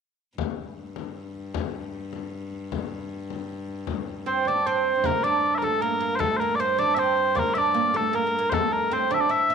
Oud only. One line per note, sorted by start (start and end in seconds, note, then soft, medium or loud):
4.26 4.47 C4 medium
4.48 4.66 D4 medium
4.67 5.02 C4 medium
5.05 5.23 A#3 medium
5.24 5.64 D4 medium
5.62 5.82 A3 medium
5.82 5.99 A#3 medium
6.01 6.19 A#3 medium
6.19 6.40 A3 medium
6.41 6.61 A#3 medium
6.60 6.78 C4 medium
6.78 6.96 D4 medium
6.96 7.37 C4 medium
7.35 7.56 A#3 medium
7.55 7.76 D4 medium
7.74 7.94 A#3 medium
7.94 8.13 A3 medium
8.13 8.26 A#3 medium
8.27 8.37 A#3 medium
8.39 8.51 A#3 medium
8.52 8.92 A3 medium
8.91 9.10 C4 medium
9.11 9.29 D4 medium
9.29 9.49 E4 medium
9.50 9.55 E4 medium